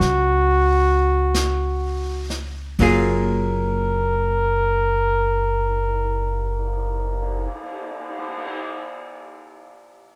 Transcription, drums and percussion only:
0.01 brush sweep soft
0.01 snare soft
1.34 brush sweep soft
1.34 snare soft
1.34 hi-hat pedal soft
2.30 snare soft
2.79 kick soft
2.79 ride medium
3.82 cymbal swell soft

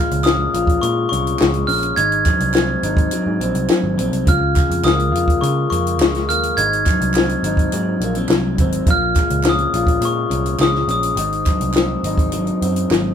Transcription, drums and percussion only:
0.11 closed hi-hat medium
0.24 snare loud
0.24 clap medium
0.54 closed hi-hat medium
0.67 kick medium
0.67 closed hi-hat soft
0.83 closed hi-hat medium
1.13 closed hi-hat medium
1.27 closed hi-hat soft
1.39 snare loud
1.39 clap medium
1.54 closed hi-hat soft
1.69 open hi-hat medium
1.83 closed hi-hat medium
1.97 closed hi-hat loud
2.12 closed hi-hat soft
2.25 kick medium
2.25 clap medium
2.25 closed hi-hat medium
2.40 closed hi-hat medium
2.54 snare loud
2.54 clap medium
2.83 closed hi-hat medium
2.97 kick medium
2.97 closed hi-hat soft
3.11 closed hi-hat medium
3.41 closed hi-hat medium
3.55 closed hi-hat soft
3.70 snare loud
3.70 clap medium
3.99 closed hi-hat medium
4.13 closed hi-hat medium
4.27 kick loud
4.27 closed hi-hat medium
4.56 kick medium
4.56 clap medium
4.56 closed hi-hat medium
4.71 closed hi-hat medium
4.84 snare loud
4.84 clap medium
5.00 closed hi-hat soft
5.15 closed hi-hat medium
5.28 kick medium
5.28 closed hi-hat soft
5.43 closed hi-hat medium
5.72 closed hi-hat medium
5.87 closed hi-hat soft
6.00 snare loud
6.00 clap medium
6.15 snare soft
6.15 closed hi-hat soft
6.30 closed hi-hat medium
6.43 closed hi-hat medium
6.57 closed hi-hat medium
6.73 closed hi-hat soft
6.86 kick medium
6.86 clap medium
6.86 closed hi-hat medium
7.01 closed hi-hat medium
7.14 snare loud
7.14 clap medium
7.29 closed hi-hat soft
7.44 closed hi-hat medium
7.57 kick medium
7.57 closed hi-hat medium
7.72 closed hi-hat medium
8.01 closed hi-hat medium
8.15 closed hi-hat soft
8.29 snare loud
8.29 clap medium
8.58 kick loud
8.58 closed hi-hat medium
8.72 closed hi-hat medium
8.87 kick loud
8.87 closed hi-hat medium
9.15 kick medium
9.15 clap medium
9.15 closed hi-hat medium
9.30 closed hi-hat medium
9.44 snare loud
9.44 clap medium
9.59 closed hi-hat soft
9.74 closed hi-hat medium
9.87 kick medium
9.87 closed hi-hat medium
10.02 closed hi-hat medium
10.31 closed hi-hat medium
10.46 closed hi-hat medium
10.59 snare loud
10.59 clap medium
10.75 snare soft
10.89 closed hi-hat medium
11.03 closed hi-hat medium
11.17 closed hi-hat medium
11.32 closed hi-hat soft
11.46 kick medium
11.46 clap medium
11.46 closed hi-hat medium
11.61 closed hi-hat medium
11.74 snare loud
11.74 clap medium
12.04 closed hi-hat medium
12.18 kick medium
12.18 closed hi-hat medium
12.32 closed hi-hat medium
12.47 closed hi-hat soft
12.62 closed hi-hat medium
12.76 closed hi-hat medium
12.91 snare loud
12.91 clap medium

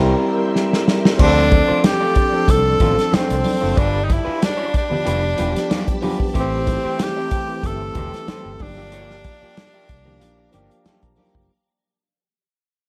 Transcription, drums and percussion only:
0.56 snare soft
0.73 snare medium
0.88 snare medium
1.05 snare medium
1.19 kick loud
1.19 crash loud
1.19 muted conga soft
1.52 kick medium
1.52 closed hi-hat medium
1.52 muted conga medium
1.84 snare loud
1.84 closed hi-hat loud
1.84 high conga medium
2.15 kick medium
2.15 closed hi-hat medium
2.48 kick medium
2.48 closed hi-hat medium
2.48 muted conga medium
2.80 kick loud
2.80 closed hi-hat medium
2.80 muted conga medium
2.80 low conga medium
2.99 snare soft
2.99 closed hi-hat soft
3.13 snare loud
3.13 closed hi-hat loud
3.13 high conga medium
3.30 closed hi-hat medium
3.44 open hi-hat medium
3.44 high conga medium
3.77 kick loud
3.77 closed hi-hat loud
4.10 kick medium
4.10 closed hi-hat medium
4.10 muted conga soft
4.42 snare loud
4.42 closed hi-hat loud
4.42 high conga medium
4.74 kick medium
4.74 closed hi-hat medium
4.91 low conga medium
5.07 closed hi-hat medium
5.07 muted conga medium
5.38 closed hi-hat medium
5.38 muted conga medium
5.56 snare soft
5.56 closed hi-hat medium
5.71 snare loud
5.71 closed hi-hat loud
5.71 high conga medium
5.88 kick medium
5.88 closed hi-hat medium
6.02 open hi-hat medium
6.02 high conga medium
6.20 kick medium
6.35 kick loud
6.35 closed hi-hat loud
6.35 muted conga soft
6.67 kick medium
6.67 closed hi-hat medium
6.67 muted conga medium
6.99 snare loud
6.99 closed hi-hat loud
6.99 high conga medium
7.31 kick medium
7.31 closed hi-hat medium
7.63 kick medium
7.63 closed hi-hat loud
7.63 muted conga soft
7.95 kick medium
7.95 closed hi-hat medium
7.95 muted conga medium
7.95 low conga medium
8.14 snare soft
8.14 closed hi-hat soft
8.28 snare loud
8.28 closed hi-hat medium
8.28 high conga medium
8.59 kick medium
8.59 open hi-hat medium
8.59 high conga medium
8.92 closed hi-hat medium
8.92 muted conga soft
9.11 snare soft
9.24 kick medium
9.24 closed hi-hat medium
9.24 muted conga soft
9.57 snare loud
9.57 closed hi-hat loud
9.57 high conga medium
9.89 kick medium
9.89 closed hi-hat medium
10.06 low conga medium
10.21 closed hi-hat medium
10.21 muted conga soft
10.53 closed hi-hat medium
10.53 muted conga medium
10.71 closed hi-hat soft
10.86 snare loud
10.86 closed hi-hat loud
10.86 high conga medium
11.03 kick medium
11.03 closed hi-hat medium
11.16 open hi-hat medium
11.16 high conga medium
11.35 kick loud

